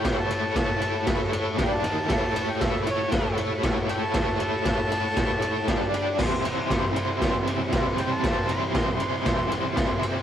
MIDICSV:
0, 0, Header, 1, 4, 480
1, 0, Start_track
1, 0, Tempo, 511945
1, 36, Time_signature, 4, 2, 24, 8
1, 9587, End_track
2, 0, Start_track
2, 0, Title_t, "Harmonica"
2, 0, Program_c, 0, 22
2, 0, Note_on_c, 0, 79, 99
2, 152, Note_off_c, 0, 79, 0
2, 186, Note_on_c, 0, 81, 90
2, 522, Note_off_c, 0, 81, 0
2, 544, Note_on_c, 0, 81, 98
2, 998, Note_off_c, 0, 81, 0
2, 1512, Note_on_c, 0, 79, 90
2, 1630, Note_on_c, 0, 81, 100
2, 1644, Note_off_c, 0, 79, 0
2, 2351, Note_on_c, 0, 79, 86
2, 2365, Note_off_c, 0, 81, 0
2, 2475, Note_on_c, 0, 76, 85
2, 2489, Note_off_c, 0, 79, 0
2, 2691, Note_off_c, 0, 76, 0
2, 2724, Note_on_c, 0, 73, 97
2, 3169, Note_off_c, 0, 73, 0
2, 3655, Note_on_c, 0, 79, 100
2, 3760, Note_off_c, 0, 79, 0
2, 3789, Note_on_c, 0, 81, 84
2, 4125, Note_off_c, 0, 81, 0
2, 4150, Note_on_c, 0, 81, 111
2, 5538, Note_off_c, 0, 81, 0
2, 7501, Note_on_c, 0, 79, 97
2, 7626, Note_on_c, 0, 81, 95
2, 7640, Note_off_c, 0, 79, 0
2, 7961, Note_off_c, 0, 81, 0
2, 7991, Note_on_c, 0, 84, 107
2, 9374, Note_off_c, 0, 84, 0
2, 9587, End_track
3, 0, Start_track
3, 0, Title_t, "Overdriven electric guitar"
3, 0, Program_c, 1, 29
3, 46, Note_on_c, 1, 57, 95
3, 53, Note_on_c, 1, 64, 92
3, 64, Note_on_c, 1, 69, 105
3, 66, Note_on_c, 1, 73, 115
3, 259, Note_off_c, 1, 57, 0
3, 270, Note_on_c, 1, 57, 86
3, 272, Note_off_c, 1, 64, 0
3, 282, Note_off_c, 1, 69, 0
3, 283, Note_on_c, 1, 64, 91
3, 293, Note_on_c, 1, 69, 96
3, 294, Note_off_c, 1, 73, 0
3, 305, Note_on_c, 1, 73, 103
3, 501, Note_off_c, 1, 57, 0
3, 511, Note_off_c, 1, 64, 0
3, 512, Note_on_c, 1, 57, 92
3, 521, Note_off_c, 1, 69, 0
3, 523, Note_on_c, 1, 64, 106
3, 526, Note_off_c, 1, 73, 0
3, 532, Note_on_c, 1, 69, 105
3, 537, Note_on_c, 1, 73, 108
3, 743, Note_off_c, 1, 57, 0
3, 748, Note_off_c, 1, 64, 0
3, 754, Note_on_c, 1, 57, 92
3, 760, Note_on_c, 1, 64, 97
3, 762, Note_off_c, 1, 69, 0
3, 769, Note_off_c, 1, 73, 0
3, 773, Note_on_c, 1, 69, 85
3, 780, Note_on_c, 1, 73, 88
3, 988, Note_off_c, 1, 57, 0
3, 998, Note_off_c, 1, 64, 0
3, 999, Note_on_c, 1, 57, 104
3, 1004, Note_off_c, 1, 69, 0
3, 1009, Note_on_c, 1, 64, 109
3, 1015, Note_on_c, 1, 69, 112
3, 1017, Note_off_c, 1, 73, 0
3, 1028, Note_on_c, 1, 73, 116
3, 1221, Note_off_c, 1, 57, 0
3, 1228, Note_off_c, 1, 64, 0
3, 1232, Note_on_c, 1, 57, 78
3, 1239, Note_on_c, 1, 64, 80
3, 1240, Note_off_c, 1, 69, 0
3, 1249, Note_off_c, 1, 73, 0
3, 1251, Note_on_c, 1, 69, 90
3, 1260, Note_on_c, 1, 73, 95
3, 1461, Note_off_c, 1, 57, 0
3, 1465, Note_off_c, 1, 64, 0
3, 1470, Note_on_c, 1, 55, 97
3, 1471, Note_off_c, 1, 69, 0
3, 1476, Note_off_c, 1, 73, 0
3, 1480, Note_on_c, 1, 62, 106
3, 1487, Note_on_c, 1, 67, 98
3, 1492, Note_on_c, 1, 74, 103
3, 1701, Note_off_c, 1, 55, 0
3, 1704, Note_on_c, 1, 51, 98
3, 1706, Note_off_c, 1, 62, 0
3, 1709, Note_off_c, 1, 67, 0
3, 1712, Note_off_c, 1, 74, 0
3, 1717, Note_on_c, 1, 58, 93
3, 1722, Note_on_c, 1, 63, 106
3, 1733, Note_on_c, 1, 70, 112
3, 1938, Note_off_c, 1, 51, 0
3, 1943, Note_off_c, 1, 58, 0
3, 1946, Note_on_c, 1, 57, 99
3, 1947, Note_off_c, 1, 63, 0
3, 1952, Note_off_c, 1, 70, 0
3, 1957, Note_on_c, 1, 64, 106
3, 1964, Note_on_c, 1, 69, 115
3, 1973, Note_on_c, 1, 73, 110
3, 2194, Note_off_c, 1, 57, 0
3, 2198, Note_on_c, 1, 57, 89
3, 2205, Note_off_c, 1, 64, 0
3, 2209, Note_on_c, 1, 64, 86
3, 2215, Note_off_c, 1, 69, 0
3, 2218, Note_on_c, 1, 69, 95
3, 2226, Note_off_c, 1, 73, 0
3, 2229, Note_on_c, 1, 73, 94
3, 2430, Note_off_c, 1, 57, 0
3, 2440, Note_off_c, 1, 64, 0
3, 2442, Note_on_c, 1, 57, 95
3, 2446, Note_off_c, 1, 69, 0
3, 2449, Note_off_c, 1, 73, 0
3, 2451, Note_on_c, 1, 64, 104
3, 2458, Note_on_c, 1, 69, 99
3, 2461, Note_on_c, 1, 73, 107
3, 2664, Note_off_c, 1, 57, 0
3, 2676, Note_off_c, 1, 64, 0
3, 2676, Note_on_c, 1, 57, 83
3, 2681, Note_off_c, 1, 69, 0
3, 2687, Note_on_c, 1, 64, 88
3, 2691, Note_off_c, 1, 73, 0
3, 2692, Note_on_c, 1, 69, 83
3, 2702, Note_on_c, 1, 73, 85
3, 2912, Note_off_c, 1, 57, 0
3, 2923, Note_off_c, 1, 64, 0
3, 2923, Note_on_c, 1, 57, 97
3, 2926, Note_off_c, 1, 69, 0
3, 2933, Note_off_c, 1, 73, 0
3, 2934, Note_on_c, 1, 64, 97
3, 2938, Note_on_c, 1, 69, 107
3, 2945, Note_on_c, 1, 73, 108
3, 3145, Note_off_c, 1, 57, 0
3, 3153, Note_off_c, 1, 64, 0
3, 3157, Note_on_c, 1, 57, 90
3, 3164, Note_on_c, 1, 64, 91
3, 3165, Note_off_c, 1, 69, 0
3, 3170, Note_off_c, 1, 73, 0
3, 3176, Note_on_c, 1, 69, 93
3, 3181, Note_on_c, 1, 73, 93
3, 3393, Note_off_c, 1, 57, 0
3, 3401, Note_off_c, 1, 64, 0
3, 3404, Note_off_c, 1, 69, 0
3, 3404, Note_on_c, 1, 57, 101
3, 3412, Note_on_c, 1, 64, 107
3, 3415, Note_off_c, 1, 73, 0
3, 3415, Note_on_c, 1, 69, 99
3, 3426, Note_on_c, 1, 73, 111
3, 3626, Note_off_c, 1, 57, 0
3, 3637, Note_off_c, 1, 64, 0
3, 3637, Note_on_c, 1, 57, 87
3, 3648, Note_on_c, 1, 64, 88
3, 3650, Note_off_c, 1, 69, 0
3, 3654, Note_off_c, 1, 73, 0
3, 3661, Note_on_c, 1, 69, 105
3, 3665, Note_on_c, 1, 73, 91
3, 3872, Note_off_c, 1, 57, 0
3, 3879, Note_off_c, 1, 64, 0
3, 3883, Note_on_c, 1, 57, 100
3, 3890, Note_on_c, 1, 64, 111
3, 3891, Note_off_c, 1, 69, 0
3, 3898, Note_off_c, 1, 73, 0
3, 3902, Note_on_c, 1, 69, 109
3, 3910, Note_on_c, 1, 73, 118
3, 4112, Note_off_c, 1, 57, 0
3, 4121, Note_off_c, 1, 64, 0
3, 4124, Note_on_c, 1, 57, 84
3, 4130, Note_off_c, 1, 69, 0
3, 4132, Note_on_c, 1, 64, 91
3, 4135, Note_off_c, 1, 73, 0
3, 4141, Note_on_c, 1, 69, 90
3, 4147, Note_on_c, 1, 73, 93
3, 4350, Note_off_c, 1, 57, 0
3, 4360, Note_off_c, 1, 64, 0
3, 4361, Note_on_c, 1, 57, 100
3, 4369, Note_off_c, 1, 69, 0
3, 4371, Note_on_c, 1, 64, 97
3, 4376, Note_off_c, 1, 73, 0
3, 4380, Note_on_c, 1, 69, 104
3, 4388, Note_on_c, 1, 73, 107
3, 4589, Note_off_c, 1, 57, 0
3, 4600, Note_off_c, 1, 64, 0
3, 4600, Note_on_c, 1, 57, 86
3, 4609, Note_off_c, 1, 69, 0
3, 4611, Note_on_c, 1, 64, 86
3, 4612, Note_off_c, 1, 73, 0
3, 4620, Note_on_c, 1, 69, 90
3, 4623, Note_on_c, 1, 73, 96
3, 4825, Note_off_c, 1, 57, 0
3, 4835, Note_off_c, 1, 64, 0
3, 4836, Note_on_c, 1, 57, 102
3, 4847, Note_on_c, 1, 64, 98
3, 4848, Note_off_c, 1, 69, 0
3, 4850, Note_off_c, 1, 73, 0
3, 4859, Note_on_c, 1, 69, 107
3, 4862, Note_on_c, 1, 73, 106
3, 5065, Note_off_c, 1, 57, 0
3, 5072, Note_off_c, 1, 64, 0
3, 5077, Note_on_c, 1, 57, 84
3, 5083, Note_on_c, 1, 64, 86
3, 5087, Note_off_c, 1, 69, 0
3, 5092, Note_off_c, 1, 73, 0
3, 5098, Note_on_c, 1, 69, 98
3, 5103, Note_on_c, 1, 73, 95
3, 5305, Note_off_c, 1, 57, 0
3, 5308, Note_off_c, 1, 64, 0
3, 5316, Note_off_c, 1, 69, 0
3, 5318, Note_off_c, 1, 73, 0
3, 5324, Note_on_c, 1, 55, 100
3, 5334, Note_on_c, 1, 62, 110
3, 5347, Note_on_c, 1, 67, 111
3, 5350, Note_on_c, 1, 74, 102
3, 5551, Note_off_c, 1, 55, 0
3, 5553, Note_off_c, 1, 62, 0
3, 5554, Note_on_c, 1, 55, 95
3, 5561, Note_off_c, 1, 74, 0
3, 5568, Note_on_c, 1, 62, 98
3, 5573, Note_off_c, 1, 67, 0
3, 5577, Note_on_c, 1, 67, 104
3, 5583, Note_on_c, 1, 74, 114
3, 5790, Note_off_c, 1, 62, 0
3, 5790, Note_on_c, 1, 48, 100
3, 5798, Note_off_c, 1, 74, 0
3, 5800, Note_off_c, 1, 55, 0
3, 5803, Note_on_c, 1, 52, 109
3, 5807, Note_on_c, 1, 55, 106
3, 5814, Note_on_c, 1, 60, 107
3, 5815, Note_off_c, 1, 67, 0
3, 5819, Note_on_c, 1, 64, 112
3, 5829, Note_on_c, 1, 72, 106
3, 6025, Note_off_c, 1, 48, 0
3, 6028, Note_on_c, 1, 48, 86
3, 6036, Note_off_c, 1, 52, 0
3, 6039, Note_off_c, 1, 55, 0
3, 6040, Note_on_c, 1, 52, 82
3, 6043, Note_on_c, 1, 55, 81
3, 6054, Note_off_c, 1, 60, 0
3, 6057, Note_off_c, 1, 64, 0
3, 6057, Note_on_c, 1, 60, 85
3, 6061, Note_on_c, 1, 64, 94
3, 6063, Note_off_c, 1, 72, 0
3, 6066, Note_on_c, 1, 72, 93
3, 6275, Note_off_c, 1, 48, 0
3, 6279, Note_on_c, 1, 48, 97
3, 6283, Note_off_c, 1, 52, 0
3, 6286, Note_on_c, 1, 52, 108
3, 6290, Note_off_c, 1, 55, 0
3, 6294, Note_on_c, 1, 55, 102
3, 6299, Note_off_c, 1, 60, 0
3, 6303, Note_on_c, 1, 60, 104
3, 6307, Note_off_c, 1, 64, 0
3, 6311, Note_on_c, 1, 64, 112
3, 6312, Note_off_c, 1, 72, 0
3, 6316, Note_on_c, 1, 72, 95
3, 6510, Note_off_c, 1, 48, 0
3, 6513, Note_on_c, 1, 48, 81
3, 6516, Note_off_c, 1, 52, 0
3, 6520, Note_on_c, 1, 52, 80
3, 6527, Note_off_c, 1, 55, 0
3, 6530, Note_off_c, 1, 60, 0
3, 6531, Note_on_c, 1, 55, 90
3, 6534, Note_on_c, 1, 60, 93
3, 6542, Note_off_c, 1, 64, 0
3, 6546, Note_on_c, 1, 64, 94
3, 6548, Note_off_c, 1, 72, 0
3, 6552, Note_on_c, 1, 72, 96
3, 6750, Note_off_c, 1, 48, 0
3, 6762, Note_on_c, 1, 48, 99
3, 6764, Note_off_c, 1, 52, 0
3, 6773, Note_off_c, 1, 55, 0
3, 6775, Note_on_c, 1, 52, 97
3, 6781, Note_off_c, 1, 60, 0
3, 6784, Note_on_c, 1, 55, 110
3, 6786, Note_off_c, 1, 64, 0
3, 6792, Note_on_c, 1, 60, 114
3, 6795, Note_off_c, 1, 72, 0
3, 6797, Note_on_c, 1, 64, 107
3, 6806, Note_on_c, 1, 72, 107
3, 6988, Note_off_c, 1, 48, 0
3, 7000, Note_on_c, 1, 48, 82
3, 7003, Note_off_c, 1, 52, 0
3, 7003, Note_off_c, 1, 55, 0
3, 7009, Note_off_c, 1, 60, 0
3, 7014, Note_on_c, 1, 52, 81
3, 7014, Note_on_c, 1, 55, 90
3, 7019, Note_off_c, 1, 64, 0
3, 7020, Note_on_c, 1, 60, 83
3, 7026, Note_off_c, 1, 72, 0
3, 7031, Note_on_c, 1, 64, 95
3, 7037, Note_on_c, 1, 72, 90
3, 7224, Note_off_c, 1, 48, 0
3, 7236, Note_off_c, 1, 52, 0
3, 7236, Note_on_c, 1, 48, 105
3, 7240, Note_off_c, 1, 55, 0
3, 7247, Note_on_c, 1, 52, 101
3, 7251, Note_off_c, 1, 60, 0
3, 7252, Note_on_c, 1, 55, 111
3, 7254, Note_off_c, 1, 64, 0
3, 7263, Note_on_c, 1, 60, 115
3, 7265, Note_off_c, 1, 72, 0
3, 7265, Note_on_c, 1, 64, 119
3, 7276, Note_on_c, 1, 72, 106
3, 7463, Note_off_c, 1, 48, 0
3, 7474, Note_on_c, 1, 48, 85
3, 7476, Note_off_c, 1, 52, 0
3, 7483, Note_off_c, 1, 55, 0
3, 7485, Note_off_c, 1, 60, 0
3, 7487, Note_on_c, 1, 52, 100
3, 7494, Note_on_c, 1, 55, 93
3, 7495, Note_off_c, 1, 64, 0
3, 7496, Note_on_c, 1, 60, 100
3, 7497, Note_off_c, 1, 72, 0
3, 7506, Note_on_c, 1, 64, 89
3, 7509, Note_on_c, 1, 72, 99
3, 7706, Note_off_c, 1, 48, 0
3, 7717, Note_on_c, 1, 48, 98
3, 7718, Note_off_c, 1, 52, 0
3, 7721, Note_off_c, 1, 55, 0
3, 7729, Note_on_c, 1, 52, 109
3, 7732, Note_on_c, 1, 55, 98
3, 7733, Note_off_c, 1, 60, 0
3, 7737, Note_off_c, 1, 64, 0
3, 7744, Note_off_c, 1, 72, 0
3, 7745, Note_on_c, 1, 60, 108
3, 7748, Note_on_c, 1, 64, 104
3, 7756, Note_on_c, 1, 72, 106
3, 7944, Note_off_c, 1, 48, 0
3, 7954, Note_off_c, 1, 52, 0
3, 7955, Note_on_c, 1, 48, 94
3, 7962, Note_off_c, 1, 55, 0
3, 7965, Note_on_c, 1, 52, 88
3, 7968, Note_off_c, 1, 60, 0
3, 7973, Note_on_c, 1, 55, 91
3, 7974, Note_off_c, 1, 64, 0
3, 7979, Note_on_c, 1, 60, 87
3, 7980, Note_off_c, 1, 72, 0
3, 7985, Note_on_c, 1, 64, 93
3, 7991, Note_on_c, 1, 72, 97
3, 8183, Note_off_c, 1, 48, 0
3, 8195, Note_on_c, 1, 48, 103
3, 8198, Note_off_c, 1, 52, 0
3, 8202, Note_off_c, 1, 55, 0
3, 8209, Note_on_c, 1, 52, 101
3, 8213, Note_off_c, 1, 60, 0
3, 8213, Note_on_c, 1, 55, 101
3, 8220, Note_off_c, 1, 72, 0
3, 8221, Note_off_c, 1, 64, 0
3, 8224, Note_on_c, 1, 60, 108
3, 8232, Note_on_c, 1, 64, 104
3, 8232, Note_on_c, 1, 72, 99
3, 8424, Note_off_c, 1, 48, 0
3, 8432, Note_off_c, 1, 52, 0
3, 8435, Note_on_c, 1, 48, 88
3, 8437, Note_off_c, 1, 55, 0
3, 8443, Note_on_c, 1, 52, 91
3, 8448, Note_off_c, 1, 60, 0
3, 8449, Note_on_c, 1, 55, 96
3, 8456, Note_off_c, 1, 64, 0
3, 8458, Note_off_c, 1, 72, 0
3, 8459, Note_on_c, 1, 60, 89
3, 8467, Note_on_c, 1, 64, 100
3, 8469, Note_on_c, 1, 72, 93
3, 8642, Note_off_c, 1, 48, 0
3, 8653, Note_on_c, 1, 48, 102
3, 8655, Note_off_c, 1, 52, 0
3, 8660, Note_off_c, 1, 55, 0
3, 8666, Note_on_c, 1, 52, 93
3, 8670, Note_off_c, 1, 60, 0
3, 8672, Note_on_c, 1, 55, 103
3, 8679, Note_off_c, 1, 64, 0
3, 8681, Note_on_c, 1, 60, 100
3, 8685, Note_off_c, 1, 72, 0
3, 8690, Note_on_c, 1, 64, 106
3, 8696, Note_on_c, 1, 72, 101
3, 8896, Note_off_c, 1, 48, 0
3, 8907, Note_off_c, 1, 52, 0
3, 8908, Note_on_c, 1, 48, 80
3, 8918, Note_on_c, 1, 52, 89
3, 8919, Note_off_c, 1, 55, 0
3, 8923, Note_off_c, 1, 60, 0
3, 8928, Note_off_c, 1, 64, 0
3, 8930, Note_on_c, 1, 55, 90
3, 8934, Note_on_c, 1, 60, 86
3, 8936, Note_off_c, 1, 72, 0
3, 8939, Note_on_c, 1, 64, 91
3, 8947, Note_on_c, 1, 72, 102
3, 9132, Note_off_c, 1, 48, 0
3, 9142, Note_off_c, 1, 52, 0
3, 9143, Note_on_c, 1, 48, 101
3, 9152, Note_off_c, 1, 55, 0
3, 9154, Note_on_c, 1, 52, 104
3, 9158, Note_off_c, 1, 60, 0
3, 9163, Note_on_c, 1, 55, 103
3, 9165, Note_off_c, 1, 64, 0
3, 9166, Note_off_c, 1, 72, 0
3, 9169, Note_on_c, 1, 60, 106
3, 9176, Note_on_c, 1, 64, 103
3, 9177, Note_on_c, 1, 72, 107
3, 9377, Note_off_c, 1, 48, 0
3, 9386, Note_off_c, 1, 52, 0
3, 9388, Note_on_c, 1, 48, 95
3, 9397, Note_off_c, 1, 55, 0
3, 9397, Note_on_c, 1, 52, 85
3, 9407, Note_off_c, 1, 60, 0
3, 9408, Note_off_c, 1, 64, 0
3, 9409, Note_on_c, 1, 55, 94
3, 9418, Note_off_c, 1, 72, 0
3, 9418, Note_on_c, 1, 60, 97
3, 9419, Note_on_c, 1, 64, 94
3, 9429, Note_on_c, 1, 72, 98
3, 9587, Note_off_c, 1, 48, 0
3, 9587, Note_off_c, 1, 52, 0
3, 9587, Note_off_c, 1, 55, 0
3, 9587, Note_off_c, 1, 60, 0
3, 9587, Note_off_c, 1, 64, 0
3, 9587, Note_off_c, 1, 72, 0
3, 9587, End_track
4, 0, Start_track
4, 0, Title_t, "Drums"
4, 42, Note_on_c, 9, 38, 122
4, 45, Note_on_c, 9, 36, 115
4, 45, Note_on_c, 9, 51, 108
4, 136, Note_off_c, 9, 38, 0
4, 138, Note_off_c, 9, 36, 0
4, 139, Note_off_c, 9, 51, 0
4, 285, Note_on_c, 9, 51, 83
4, 379, Note_off_c, 9, 51, 0
4, 522, Note_on_c, 9, 38, 111
4, 525, Note_on_c, 9, 36, 116
4, 525, Note_on_c, 9, 51, 100
4, 616, Note_off_c, 9, 38, 0
4, 618, Note_off_c, 9, 36, 0
4, 619, Note_off_c, 9, 51, 0
4, 764, Note_on_c, 9, 51, 80
4, 858, Note_off_c, 9, 51, 0
4, 998, Note_on_c, 9, 38, 115
4, 1000, Note_on_c, 9, 51, 116
4, 1006, Note_on_c, 9, 36, 122
4, 1091, Note_off_c, 9, 38, 0
4, 1094, Note_off_c, 9, 51, 0
4, 1100, Note_off_c, 9, 36, 0
4, 1247, Note_on_c, 9, 51, 87
4, 1341, Note_off_c, 9, 51, 0
4, 1482, Note_on_c, 9, 38, 108
4, 1485, Note_on_c, 9, 51, 112
4, 1488, Note_on_c, 9, 36, 114
4, 1576, Note_off_c, 9, 38, 0
4, 1579, Note_off_c, 9, 51, 0
4, 1582, Note_off_c, 9, 36, 0
4, 1724, Note_on_c, 9, 51, 79
4, 1818, Note_off_c, 9, 51, 0
4, 1962, Note_on_c, 9, 38, 117
4, 1965, Note_on_c, 9, 51, 118
4, 1968, Note_on_c, 9, 36, 122
4, 2056, Note_off_c, 9, 38, 0
4, 2058, Note_off_c, 9, 51, 0
4, 2062, Note_off_c, 9, 36, 0
4, 2212, Note_on_c, 9, 51, 86
4, 2305, Note_off_c, 9, 51, 0
4, 2446, Note_on_c, 9, 38, 102
4, 2448, Note_on_c, 9, 51, 105
4, 2450, Note_on_c, 9, 36, 108
4, 2539, Note_off_c, 9, 38, 0
4, 2542, Note_off_c, 9, 51, 0
4, 2543, Note_off_c, 9, 36, 0
4, 2687, Note_on_c, 9, 51, 78
4, 2781, Note_off_c, 9, 51, 0
4, 2922, Note_on_c, 9, 38, 118
4, 2924, Note_on_c, 9, 51, 110
4, 2929, Note_on_c, 9, 36, 118
4, 3015, Note_off_c, 9, 38, 0
4, 3018, Note_off_c, 9, 51, 0
4, 3023, Note_off_c, 9, 36, 0
4, 3164, Note_on_c, 9, 51, 80
4, 3258, Note_off_c, 9, 51, 0
4, 3403, Note_on_c, 9, 38, 115
4, 3406, Note_on_c, 9, 51, 105
4, 3408, Note_on_c, 9, 36, 112
4, 3497, Note_off_c, 9, 38, 0
4, 3500, Note_off_c, 9, 51, 0
4, 3502, Note_off_c, 9, 36, 0
4, 3648, Note_on_c, 9, 51, 69
4, 3742, Note_off_c, 9, 51, 0
4, 3878, Note_on_c, 9, 38, 121
4, 3881, Note_on_c, 9, 51, 103
4, 3886, Note_on_c, 9, 36, 119
4, 3972, Note_off_c, 9, 38, 0
4, 3975, Note_off_c, 9, 51, 0
4, 3980, Note_off_c, 9, 36, 0
4, 4123, Note_on_c, 9, 51, 76
4, 4217, Note_off_c, 9, 51, 0
4, 4360, Note_on_c, 9, 38, 104
4, 4363, Note_on_c, 9, 51, 105
4, 4366, Note_on_c, 9, 36, 109
4, 4454, Note_off_c, 9, 38, 0
4, 4456, Note_off_c, 9, 51, 0
4, 4460, Note_off_c, 9, 36, 0
4, 4609, Note_on_c, 9, 51, 81
4, 4702, Note_off_c, 9, 51, 0
4, 4841, Note_on_c, 9, 38, 114
4, 4844, Note_on_c, 9, 51, 108
4, 4846, Note_on_c, 9, 36, 116
4, 4935, Note_off_c, 9, 38, 0
4, 4938, Note_off_c, 9, 51, 0
4, 4939, Note_off_c, 9, 36, 0
4, 5083, Note_on_c, 9, 51, 80
4, 5176, Note_off_c, 9, 51, 0
4, 5323, Note_on_c, 9, 38, 122
4, 5325, Note_on_c, 9, 36, 110
4, 5325, Note_on_c, 9, 51, 110
4, 5416, Note_off_c, 9, 38, 0
4, 5419, Note_off_c, 9, 36, 0
4, 5419, Note_off_c, 9, 51, 0
4, 5567, Note_on_c, 9, 51, 79
4, 5661, Note_off_c, 9, 51, 0
4, 5799, Note_on_c, 9, 38, 127
4, 5801, Note_on_c, 9, 49, 111
4, 5806, Note_on_c, 9, 36, 125
4, 5892, Note_off_c, 9, 38, 0
4, 5895, Note_off_c, 9, 49, 0
4, 5899, Note_off_c, 9, 36, 0
4, 6048, Note_on_c, 9, 51, 85
4, 6141, Note_off_c, 9, 51, 0
4, 6287, Note_on_c, 9, 36, 102
4, 6287, Note_on_c, 9, 38, 112
4, 6290, Note_on_c, 9, 51, 107
4, 6380, Note_off_c, 9, 36, 0
4, 6381, Note_off_c, 9, 38, 0
4, 6384, Note_off_c, 9, 51, 0
4, 6526, Note_on_c, 9, 51, 83
4, 6619, Note_off_c, 9, 51, 0
4, 6767, Note_on_c, 9, 38, 124
4, 6768, Note_on_c, 9, 36, 117
4, 6769, Note_on_c, 9, 51, 105
4, 6860, Note_off_c, 9, 38, 0
4, 6862, Note_off_c, 9, 36, 0
4, 6863, Note_off_c, 9, 51, 0
4, 7007, Note_on_c, 9, 51, 85
4, 7100, Note_off_c, 9, 51, 0
4, 7240, Note_on_c, 9, 38, 111
4, 7243, Note_on_c, 9, 51, 105
4, 7245, Note_on_c, 9, 36, 120
4, 7334, Note_off_c, 9, 38, 0
4, 7337, Note_off_c, 9, 51, 0
4, 7339, Note_off_c, 9, 36, 0
4, 7482, Note_on_c, 9, 51, 72
4, 7576, Note_off_c, 9, 51, 0
4, 7723, Note_on_c, 9, 38, 118
4, 7725, Note_on_c, 9, 36, 125
4, 7726, Note_on_c, 9, 51, 113
4, 7817, Note_off_c, 9, 38, 0
4, 7818, Note_off_c, 9, 36, 0
4, 7820, Note_off_c, 9, 51, 0
4, 7959, Note_on_c, 9, 51, 80
4, 8052, Note_off_c, 9, 51, 0
4, 8198, Note_on_c, 9, 38, 113
4, 8201, Note_on_c, 9, 51, 91
4, 8203, Note_on_c, 9, 36, 113
4, 8292, Note_off_c, 9, 38, 0
4, 8294, Note_off_c, 9, 51, 0
4, 8296, Note_off_c, 9, 36, 0
4, 8436, Note_on_c, 9, 51, 73
4, 8530, Note_off_c, 9, 51, 0
4, 8678, Note_on_c, 9, 38, 115
4, 8681, Note_on_c, 9, 51, 103
4, 8683, Note_on_c, 9, 36, 115
4, 8772, Note_off_c, 9, 38, 0
4, 8774, Note_off_c, 9, 51, 0
4, 8776, Note_off_c, 9, 36, 0
4, 8922, Note_on_c, 9, 51, 80
4, 9015, Note_off_c, 9, 51, 0
4, 9160, Note_on_c, 9, 38, 111
4, 9162, Note_on_c, 9, 36, 126
4, 9163, Note_on_c, 9, 51, 106
4, 9253, Note_off_c, 9, 38, 0
4, 9256, Note_off_c, 9, 36, 0
4, 9256, Note_off_c, 9, 51, 0
4, 9404, Note_on_c, 9, 51, 81
4, 9498, Note_off_c, 9, 51, 0
4, 9587, End_track
0, 0, End_of_file